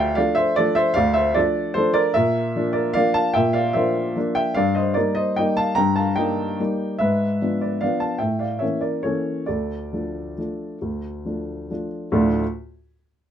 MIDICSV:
0, 0, Header, 1, 2, 480
1, 0, Start_track
1, 0, Key_signature, -1, "minor"
1, 0, Tempo, 398936
1, 1154, Time_signature, 3, 2, 24, 8
1, 5960, Tempo, 407332
1, 10280, Tempo, 438917
1, 13640, Tempo, 428571
1, 15451, End_track
2, 0, Start_track
2, 0, Title_t, "Upright piano"
2, 0, Program_c, 0, 0
2, 0, Control_c, 0, 64, 127
2, 0, Note_on_c, 0, 38, 72
2, 0, Note_on_c, 0, 74, 76
2, 0, Note_on_c, 0, 76, 69
2, 0, Note_on_c, 0, 77, 101
2, 0, Note_on_c, 0, 79, 93
2, 183, Note_off_c, 0, 76, 0
2, 183, Note_off_c, 0, 77, 0
2, 183, Note_on_c, 0, 77, 92
2, 191, Note_off_c, 0, 79, 0
2, 193, Note_off_c, 0, 38, 0
2, 195, Note_off_c, 0, 74, 0
2, 195, Note_on_c, 0, 74, 68
2, 209, Note_on_c, 0, 57, 51
2, 211, Control_c, 0, 64, 0
2, 211, Note_on_c, 0, 53, 49
2, 216, Note_on_c, 0, 62, 57
2, 418, Note_on_c, 0, 76, 96
2, 420, Note_off_c, 0, 74, 0
2, 430, Note_off_c, 0, 77, 0
2, 432, Note_on_c, 0, 72, 69
2, 638, Note_off_c, 0, 57, 0
2, 640, Note_off_c, 0, 53, 0
2, 642, Note_off_c, 0, 62, 0
2, 660, Note_off_c, 0, 72, 0
2, 671, Note_off_c, 0, 76, 0
2, 675, Note_on_c, 0, 74, 103
2, 688, Note_on_c, 0, 69, 76
2, 701, Note_on_c, 0, 53, 58
2, 701, Note_on_c, 0, 57, 54
2, 706, Note_on_c, 0, 62, 56
2, 904, Note_on_c, 0, 76, 99
2, 907, Note_off_c, 0, 69, 0
2, 916, Note_on_c, 0, 72, 76
2, 917, Note_off_c, 0, 74, 0
2, 1118, Note_off_c, 0, 53, 0
2, 1118, Note_off_c, 0, 57, 0
2, 1121, Note_off_c, 0, 62, 0
2, 1128, Note_on_c, 0, 77, 104
2, 1135, Note_off_c, 0, 72, 0
2, 1146, Note_off_c, 0, 76, 0
2, 1148, Note_on_c, 0, 74, 76
2, 1163, Note_on_c, 0, 38, 72
2, 1367, Note_on_c, 0, 76, 94
2, 1370, Note_off_c, 0, 74, 0
2, 1377, Note_off_c, 0, 77, 0
2, 1383, Control_c, 0, 64, 127
2, 1385, Note_on_c, 0, 72, 71
2, 1613, Note_off_c, 0, 72, 0
2, 1617, Note_on_c, 0, 74, 87
2, 1621, Note_off_c, 0, 76, 0
2, 1622, Note_off_c, 0, 38, 0
2, 1631, Note_on_c, 0, 69, 66
2, 1642, Note_on_c, 0, 53, 50
2, 1646, Control_c, 0, 64, 0
2, 1653, Note_on_c, 0, 57, 47
2, 1654, Note_on_c, 0, 62, 57
2, 2081, Note_off_c, 0, 53, 0
2, 2086, Note_off_c, 0, 57, 0
2, 2087, Note_off_c, 0, 62, 0
2, 2089, Note_off_c, 0, 69, 0
2, 2094, Note_on_c, 0, 72, 92
2, 2109, Note_on_c, 0, 69, 68
2, 2116, Note_off_c, 0, 74, 0
2, 2125, Note_on_c, 0, 53, 51
2, 2128, Note_on_c, 0, 57, 53
2, 2136, Note_on_c, 0, 62, 59
2, 2329, Note_on_c, 0, 74, 96
2, 2336, Note_on_c, 0, 70, 77
2, 2341, Note_off_c, 0, 69, 0
2, 2351, Note_off_c, 0, 72, 0
2, 2552, Note_off_c, 0, 53, 0
2, 2554, Note_off_c, 0, 57, 0
2, 2558, Note_off_c, 0, 62, 0
2, 2567, Note_off_c, 0, 70, 0
2, 2573, Note_on_c, 0, 76, 100
2, 2581, Note_off_c, 0, 74, 0
2, 2585, Note_on_c, 0, 70, 71
2, 2602, Note_on_c, 0, 46, 74
2, 2806, Control_c, 0, 64, 127
2, 3057, Note_off_c, 0, 46, 0
2, 3076, Note_on_c, 0, 53, 48
2, 3084, Note_on_c, 0, 58, 47
2, 3087, Note_on_c, 0, 62, 59
2, 3255, Note_off_c, 0, 70, 0
2, 3282, Note_on_c, 0, 74, 75
2, 3297, Note_off_c, 0, 76, 0
2, 3302, Note_on_c, 0, 70, 60
2, 3509, Note_off_c, 0, 53, 0
2, 3514, Note_off_c, 0, 58, 0
2, 3515, Note_off_c, 0, 62, 0
2, 3527, Note_off_c, 0, 74, 0
2, 3531, Note_on_c, 0, 77, 100
2, 3533, Note_off_c, 0, 70, 0
2, 3545, Note_on_c, 0, 74, 75
2, 3562, Note_on_c, 0, 58, 54
2, 3563, Note_on_c, 0, 53, 56
2, 3566, Note_on_c, 0, 62, 61
2, 3570, Control_c, 0, 64, 0
2, 3776, Note_off_c, 0, 74, 0
2, 3779, Note_off_c, 0, 77, 0
2, 3779, Note_on_c, 0, 81, 101
2, 3797, Note_on_c, 0, 77, 78
2, 3991, Note_off_c, 0, 58, 0
2, 3992, Note_off_c, 0, 53, 0
2, 3993, Note_off_c, 0, 62, 0
2, 4013, Note_on_c, 0, 79, 93
2, 4018, Note_off_c, 0, 77, 0
2, 4026, Note_off_c, 0, 81, 0
2, 4029, Note_on_c, 0, 76, 81
2, 4044, Note_on_c, 0, 46, 71
2, 4237, Control_c, 0, 64, 127
2, 4250, Note_on_c, 0, 77, 88
2, 4251, Note_off_c, 0, 76, 0
2, 4260, Note_off_c, 0, 79, 0
2, 4262, Note_on_c, 0, 74, 62
2, 4490, Note_off_c, 0, 74, 0
2, 4491, Note_on_c, 0, 76, 78
2, 4501, Note_off_c, 0, 77, 0
2, 4502, Note_off_c, 0, 46, 0
2, 4503, Note_on_c, 0, 72, 64
2, 4514, Note_on_c, 0, 53, 51
2, 4520, Note_on_c, 0, 58, 47
2, 4531, Note_on_c, 0, 62, 51
2, 4955, Note_off_c, 0, 53, 0
2, 4959, Note_off_c, 0, 58, 0
2, 4964, Note_off_c, 0, 62, 0
2, 5006, Note_on_c, 0, 53, 51
2, 5018, Note_on_c, 0, 58, 52
2, 5019, Control_c, 0, 64, 0
2, 5023, Note_on_c, 0, 62, 60
2, 5194, Note_off_c, 0, 72, 0
2, 5225, Note_off_c, 0, 76, 0
2, 5234, Note_on_c, 0, 79, 97
2, 5243, Note_on_c, 0, 76, 67
2, 5437, Note_off_c, 0, 53, 0
2, 5443, Note_off_c, 0, 58, 0
2, 5446, Note_off_c, 0, 62, 0
2, 5464, Note_off_c, 0, 76, 0
2, 5468, Note_on_c, 0, 77, 92
2, 5477, Note_off_c, 0, 79, 0
2, 5490, Note_on_c, 0, 74, 73
2, 5499, Note_on_c, 0, 43, 71
2, 5681, Control_c, 0, 64, 127
2, 5706, Note_off_c, 0, 74, 0
2, 5711, Note_off_c, 0, 77, 0
2, 5712, Note_on_c, 0, 75, 73
2, 5728, Note_on_c, 0, 72, 59
2, 5945, Note_on_c, 0, 74, 81
2, 5949, Note_off_c, 0, 72, 0
2, 5956, Note_off_c, 0, 43, 0
2, 5958, Note_off_c, 0, 75, 0
2, 5959, Note_on_c, 0, 70, 61
2, 5970, Control_c, 0, 64, 0
2, 5972, Note_on_c, 0, 55, 46
2, 5976, Note_on_c, 0, 58, 41
2, 5982, Note_on_c, 0, 63, 50
2, 6187, Note_off_c, 0, 70, 0
2, 6188, Note_on_c, 0, 75, 85
2, 6197, Note_off_c, 0, 74, 0
2, 6198, Note_on_c, 0, 72, 57
2, 6409, Note_off_c, 0, 55, 0
2, 6412, Note_off_c, 0, 58, 0
2, 6415, Note_off_c, 0, 63, 0
2, 6430, Note_off_c, 0, 72, 0
2, 6437, Note_off_c, 0, 75, 0
2, 6444, Note_on_c, 0, 79, 88
2, 6455, Note_on_c, 0, 75, 65
2, 6467, Note_on_c, 0, 55, 49
2, 6468, Note_on_c, 0, 58, 44
2, 6478, Note_on_c, 0, 63, 56
2, 6678, Note_off_c, 0, 75, 0
2, 6683, Note_on_c, 0, 81, 92
2, 6689, Note_off_c, 0, 79, 0
2, 6697, Note_on_c, 0, 77, 71
2, 6888, Note_off_c, 0, 55, 0
2, 6888, Note_off_c, 0, 58, 0
2, 6894, Note_off_c, 0, 63, 0
2, 6899, Note_on_c, 0, 82, 94
2, 6910, Note_on_c, 0, 79, 67
2, 6913, Note_off_c, 0, 77, 0
2, 6922, Note_off_c, 0, 81, 0
2, 6932, Note_on_c, 0, 43, 63
2, 7127, Control_c, 0, 64, 127
2, 7136, Note_off_c, 0, 79, 0
2, 7142, Note_on_c, 0, 81, 78
2, 7148, Note_off_c, 0, 82, 0
2, 7149, Note_on_c, 0, 77, 62
2, 7377, Note_on_c, 0, 79, 86
2, 7379, Note_off_c, 0, 77, 0
2, 7383, Note_on_c, 0, 75, 54
2, 7391, Note_off_c, 0, 43, 0
2, 7392, Note_off_c, 0, 81, 0
2, 7400, Note_on_c, 0, 55, 42
2, 7402, Note_on_c, 0, 58, 43
2, 7417, Note_on_c, 0, 63, 45
2, 7844, Note_off_c, 0, 55, 0
2, 7845, Note_off_c, 0, 58, 0
2, 7852, Note_off_c, 0, 63, 0
2, 7897, Note_on_c, 0, 55, 49
2, 7900, Note_on_c, 0, 58, 42
2, 7909, Note_on_c, 0, 63, 47
2, 7910, Control_c, 0, 64, 0
2, 8316, Note_off_c, 0, 75, 0
2, 8328, Note_off_c, 0, 55, 0
2, 8330, Note_off_c, 0, 58, 0
2, 8334, Note_off_c, 0, 63, 0
2, 8355, Note_on_c, 0, 76, 81
2, 8361, Note_off_c, 0, 79, 0
2, 8374, Note_on_c, 0, 71, 62
2, 8386, Note_on_c, 0, 44, 59
2, 8638, Control_c, 0, 64, 127
2, 8842, Note_off_c, 0, 44, 0
2, 8866, Note_on_c, 0, 53, 35
2, 8867, Note_on_c, 0, 62, 41
2, 8871, Note_on_c, 0, 59, 39
2, 9046, Note_off_c, 0, 71, 0
2, 9083, Note_off_c, 0, 76, 0
2, 9093, Note_on_c, 0, 74, 54
2, 9101, Note_on_c, 0, 71, 44
2, 9297, Note_off_c, 0, 53, 0
2, 9298, Note_off_c, 0, 62, 0
2, 9300, Note_off_c, 0, 59, 0
2, 9310, Note_off_c, 0, 74, 0
2, 9322, Note_on_c, 0, 77, 74
2, 9324, Note_off_c, 0, 71, 0
2, 9327, Note_on_c, 0, 74, 54
2, 9345, Control_c, 0, 64, 0
2, 9348, Note_on_c, 0, 53, 39
2, 9350, Note_on_c, 0, 59, 41
2, 9357, Note_on_c, 0, 62, 45
2, 9549, Note_off_c, 0, 77, 0
2, 9551, Note_on_c, 0, 81, 74
2, 9555, Note_off_c, 0, 74, 0
2, 9567, Note_on_c, 0, 77, 52
2, 9768, Note_off_c, 0, 53, 0
2, 9768, Note_on_c, 0, 79, 67
2, 9769, Note_off_c, 0, 59, 0
2, 9773, Note_off_c, 0, 62, 0
2, 9783, Note_on_c, 0, 76, 55
2, 9787, Note_off_c, 0, 77, 0
2, 9796, Note_off_c, 0, 81, 0
2, 9797, Note_on_c, 0, 45, 49
2, 10011, Note_off_c, 0, 76, 0
2, 10012, Note_on_c, 0, 77, 55
2, 10021, Note_off_c, 0, 79, 0
2, 10024, Note_on_c, 0, 74, 47
2, 10031, Control_c, 0, 64, 127
2, 10245, Note_on_c, 0, 76, 57
2, 10255, Note_off_c, 0, 74, 0
2, 10255, Note_on_c, 0, 73, 48
2, 10262, Note_off_c, 0, 45, 0
2, 10267, Note_off_c, 0, 77, 0
2, 10273, Note_on_c, 0, 52, 31
2, 10276, Note_on_c, 0, 58, 30
2, 10280, Note_on_c, 0, 61, 38
2, 10297, Control_c, 0, 64, 0
2, 10484, Note_off_c, 0, 73, 0
2, 10487, Note_on_c, 0, 74, 57
2, 10496, Note_off_c, 0, 76, 0
2, 10498, Note_on_c, 0, 70, 43
2, 10705, Note_off_c, 0, 52, 0
2, 10706, Note_off_c, 0, 58, 0
2, 10708, Note_off_c, 0, 61, 0
2, 10727, Note_on_c, 0, 73, 59
2, 10728, Note_off_c, 0, 70, 0
2, 10739, Note_off_c, 0, 74, 0
2, 10740, Note_on_c, 0, 69, 46
2, 10751, Note_on_c, 0, 52, 32
2, 10759, Note_on_c, 0, 58, 32
2, 10760, Note_on_c, 0, 61, 39
2, 11187, Note_off_c, 0, 52, 0
2, 11191, Note_off_c, 0, 58, 0
2, 11191, Note_off_c, 0, 61, 0
2, 11191, Note_off_c, 0, 69, 0
2, 11202, Note_on_c, 0, 74, 56
2, 11218, Note_off_c, 0, 73, 0
2, 11218, Note_on_c, 0, 69, 41
2, 11226, Note_on_c, 0, 38, 40
2, 11452, Control_c, 0, 64, 127
2, 11695, Note_off_c, 0, 38, 0
2, 11710, Note_on_c, 0, 53, 31
2, 11719, Note_on_c, 0, 57, 29
2, 11719, Note_on_c, 0, 62, 33
2, 12152, Note_off_c, 0, 53, 0
2, 12157, Note_off_c, 0, 57, 0
2, 12157, Note_off_c, 0, 62, 0
2, 12203, Note_on_c, 0, 53, 30
2, 12210, Note_on_c, 0, 57, 33
2, 12214, Control_c, 0, 64, 0
2, 12214, Note_on_c, 0, 62, 32
2, 12635, Note_off_c, 0, 53, 0
2, 12638, Note_off_c, 0, 57, 0
2, 12640, Note_off_c, 0, 62, 0
2, 12683, Note_on_c, 0, 38, 39
2, 12879, Control_c, 0, 64, 127
2, 13145, Note_off_c, 0, 38, 0
2, 13158, Note_on_c, 0, 53, 30
2, 13162, Note_on_c, 0, 57, 30
2, 13172, Note_on_c, 0, 62, 35
2, 13600, Note_off_c, 0, 53, 0
2, 13602, Note_off_c, 0, 57, 0
2, 13607, Note_off_c, 0, 62, 0
2, 13655, Note_on_c, 0, 53, 32
2, 13658, Note_on_c, 0, 57, 29
2, 13659, Control_c, 0, 64, 0
2, 13664, Note_on_c, 0, 62, 37
2, 13841, Note_off_c, 0, 69, 0
2, 13877, Note_off_c, 0, 74, 0
2, 14089, Note_off_c, 0, 53, 0
2, 14091, Note_off_c, 0, 57, 0
2, 14094, Note_off_c, 0, 62, 0
2, 14119, Note_on_c, 0, 38, 70
2, 14121, Note_on_c, 0, 45, 58
2, 14128, Note_on_c, 0, 53, 59
2, 14130, Note_on_c, 0, 57, 60
2, 14134, Note_on_c, 0, 62, 61
2, 14135, Note_on_c, 0, 65, 56
2, 14289, Control_c, 0, 64, 127
2, 14376, Note_off_c, 0, 38, 0
2, 14377, Note_off_c, 0, 45, 0
2, 14381, Note_off_c, 0, 53, 0
2, 14382, Note_off_c, 0, 57, 0
2, 14384, Note_off_c, 0, 62, 0
2, 14384, Note_off_c, 0, 65, 0
2, 14466, Control_c, 0, 64, 0
2, 15451, End_track
0, 0, End_of_file